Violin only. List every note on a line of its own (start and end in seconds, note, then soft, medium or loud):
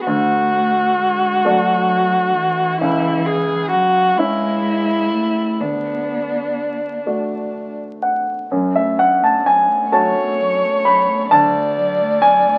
0.07 2.76 F#4 medium
2.80 3.27 E4 medium
3.26 3.70 G#4 medium
3.70 4.19 F#4 medium
4.18 5.61 E4 medium
5.60 7.79 D4 soft
9.92 11.26 C#5 medium
11.30 12.58 D5 medium